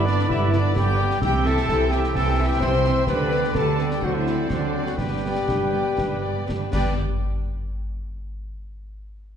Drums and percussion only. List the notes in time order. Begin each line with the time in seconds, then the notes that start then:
0.07 snare
0.19 snare
0.30 concert bass drum
0.53 snare
0.76 concert bass drum, snare
1.11 snare
1.22 concert bass drum, snare
1.46 snare
1.57 snare
1.69 concert bass drum, snare
1.91 snare
2.04 snare
2.15 concert bass drum, snare
2.61 concert bass drum, snare
2.72 snare
2.84 snare
3.07 concert bass drum, snare
3.31 snare
3.44 snare
3.55 concert bass drum, snare
3.78 snare
3.90 snare
4.02 concert bass drum
4.26 snare
4.50 concert bass drum, snare
4.86 snare
4.98 concert bass drum, snare
5.49 concert bass drum, snare
5.98 concert bass drum, snare
6.49 concert bass drum, snare
6.73 concert bass drum, snare, crash